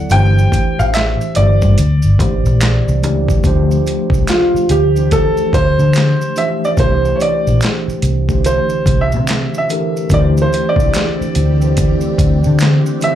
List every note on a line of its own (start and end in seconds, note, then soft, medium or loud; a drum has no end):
0.00 0.13 F#3 medium
0.00 0.13 B3 medium
0.00 0.13 E4 medium
0.00 0.12 A4 medium
0.00 0.13 D5 medium
0.00 0.14 F#5 medium
0.10 0.46 G1 loud
0.10 1.28 E3 medium
0.10 1.28 A3 medium
0.10 1.29 D4 medium
0.10 1.29 G4 medium
0.10 1.29 C5 loud
0.10 0.81 G5 loud
0.10 closed hi-hat medium
0.10 maracas medium
0.38 maracas soft
0.52 kick medium
0.52 closed hi-hat medium
0.52 maracas soft
0.79 1.14 A1 medium
0.79 0.84 F5 medium
0.79 maracas soft
0.94 1.37 E5 medium
0.94 finger snap medium
0.94 snare loud
0.94 clap medium
0.94 closed hi-hat medium
0.94 maracas medium
1.21 maracas soft
1.35 1.58 G1 medium
1.35 1.78 E3 medium
1.35 1.78 A3 medium
1.35 1.78 D4 medium
1.35 1.78 G4 medium
1.35 1.79 C5 medium
1.35 2.99 D5 medium
1.35 closed hi-hat medium
1.35 maracas soft
1.62 1.75 G2 loud
1.62 kick medium
1.62 maracas soft
1.78 2.00 D2 medium
1.78 closed hi-hat medium
1.78 maracas medium
2.02 2.20 G1 medium
2.02 maracas soft
2.18 2.42 A1 medium
2.18 2.97 E3 medium
2.18 2.97 A3 medium
2.18 2.97 D4 medium
2.18 2.98 G4 medium
2.18 2.98 C5 medium
2.18 kick loud
2.18 closed hi-hat medium
2.18 maracas soft
2.46 2.81 A#1 medium
2.46 maracas soft
2.61 finger snap medium
2.61 snare loud
2.61 clap loud
2.61 closed hi-hat medium
2.61 maracas medium
2.88 3.03 C2 medium
2.88 maracas soft
3.03 3.38 C#2 medium
3.03 3.41 E3 medium
3.03 3.42 A3 medium
3.03 3.42 D4 medium
3.03 3.42 G4 medium
3.03 3.43 D5 medium
3.03 closed hi-hat medium
3.03 maracas soft
3.29 kick medium
3.29 maracas soft
3.44 3.79 D2 medium
3.44 4.80 F3 loud
3.44 4.80 A3 medium
3.44 4.80 D4 loud
3.44 4.81 G4 medium
3.44 4.81 C5 loud
3.44 kick loud
3.44 closed hi-hat medium
3.44 maracas medium
3.71 maracas soft
3.86 closed hi-hat medium
3.86 maracas soft
4.10 4.24 C2 medium
4.10 kick loud
4.10 maracas soft
4.27 4.71 F4 medium
4.27 finger snap medium
4.27 snare loud
4.27 clap medium
4.27 closed hi-hat medium
4.27 maracas medium
4.54 muted fingered electric bass stroke soft
4.54 maracas soft
4.69 5.27 D2 medium
4.69 5.13 G4 medium
4.69 closed hi-hat medium
4.69 maracas soft
4.96 6.27 E3 medium
4.96 6.27 A3 medium
4.96 6.27 D4 medium
4.96 6.28 G4 medium
4.96 6.28 C5 medium
4.96 maracas soft
5.11 5.54 A4 medium
5.11 kick medium
5.11 closed hi-hat medium
5.11 maracas medium
5.37 maracas soft
5.53 5.75 D2 medium
5.53 6.39 C5 loud
5.53 kick medium
5.53 closed hi-hat medium
5.53 maracas soft
5.79 6.14 D3 medium
5.79 maracas soft
5.93 finger snap medium
5.93 clap medium
5.93 closed hi-hat medium
5.93 maracas medium
5.98 snare loud
6.21 maracas soft
6.36 6.75 E3 medium
6.36 6.75 A3 medium
6.36 6.75 D4 medium
6.36 6.76 G4 medium
6.36 6.76 C5 medium
6.36 6.64 E5 medium
6.36 closed hi-hat medium
6.36 maracas soft
6.65 6.70 D5 medium
6.65 maracas soft
6.77 7.13 C2 medium
6.77 8.13 E3 medium
6.77 8.13 A3 medium
6.77 8.14 D4 medium
6.77 8.14 G4 medium
6.77 7.16 C5 medium
6.77 8.14 C5 loud
6.77 kick loud
6.77 closed hi-hat medium
6.77 maracas medium
7.05 maracas soft
7.16 7.20 C#5 medium
7.20 7.59 D5 medium
7.20 closed hi-hat medium
7.20 maracas soft
7.47 7.59 A#1 medium
7.47 maracas soft
7.61 finger snap medium
7.61 snare loud
7.61 clap medium
7.61 closed hi-hat medium
7.61 maracas medium
7.88 muted fingered electric bass stroke soft
7.88 maracas soft
8.02 8.60 C2 medium
8.02 closed hi-hat medium
8.02 maracas soft
8.28 8.33 D3 medium
8.28 9.60 A3 medium
8.28 9.60 D4 medium
8.28 9.60 G4 medium
8.28 9.61 C5 medium
8.28 kick medium
8.28 maracas soft
8.35 9.63 E3 medium
8.44 9.02 C5 medium
8.44 closed hi-hat medium
8.44 maracas medium
8.70 maracas soft
8.86 9.15 C2 loud
8.86 kick medium
8.86 closed hi-hat medium
8.86 maracas soft
9.01 9.56 E5 medium
9.12 9.48 C3 medium
9.12 maracas soft
9.27 finger snap medium
9.27 snare loud
9.27 clap loud
9.27 closed hi-hat medium
9.27 maracas medium
9.54 10.14 E5 medium
9.54 maracas soft
9.69 10.08 E3 medium
9.69 10.09 D4 medium
9.69 10.09 G4 medium
9.69 10.09 A4 medium
9.69 10.10 A#4 medium
9.69 closed hi-hat medium
9.69 maracas soft
9.97 maracas soft
10.10 10.46 D2 loud
10.10 13.15 D3 medium
10.10 11.46 E3 medium
10.10 11.47 A3 medium
10.10 13.15 C4 medium
10.10 13.15 D4 medium
10.10 11.47 D4 medium
10.10 13.15 E4 medium
10.10 13.15 G4 medium
10.10 11.47 G4 medium
10.10 10.20 A#4 medium
10.10 kick loud
10.10 closed hi-hat medium
10.10 maracas medium
10.14 10.20 D5 medium
10.20 11.51 C5 loud
10.37 maracas soft
10.42 10.69 C5 medium
10.53 closed hi-hat medium
10.53 maracas soft
10.69 12.72 D5 medium
10.76 10.91 C2 medium
10.76 kick loud
10.76 maracas soft
10.94 finger snap medium
10.94 snare loud
10.94 clap medium
10.94 closed hi-hat medium
10.94 maracas medium
11.21 muted fingered electric bass stroke soft
11.21 maracas soft
11.35 11.93 D2 medium
11.35 closed hi-hat medium
11.35 maracas soft
11.62 12.93 E3 medium
11.62 12.93 A3 medium
11.62 12.94 D4 medium
11.62 12.94 G4 medium
11.62 12.94 C5 medium
11.62 maracas soft
11.77 kick medium
11.77 closed hi-hat medium
11.77 maracas medium
12.01 maracas soft
12.18 12.41 D2 medium
12.18 kick loud
12.18 closed hi-hat medium
12.18 maracas soft
12.44 12.81 D3 loud
12.44 maracas soft
12.59 finger snap medium
12.59 snare loud
12.59 clap medium
12.59 closed hi-hat medium
12.59 maracas medium
12.86 maracas soft
13.01 13.15 E3 medium
13.01 13.15 A3 medium
13.01 13.15 D4 medium
13.01 13.15 G4 medium
13.01 13.15 C5 medium
13.01 13.15 E5 medium
13.01 closed hi-hat medium
13.01 maracas soft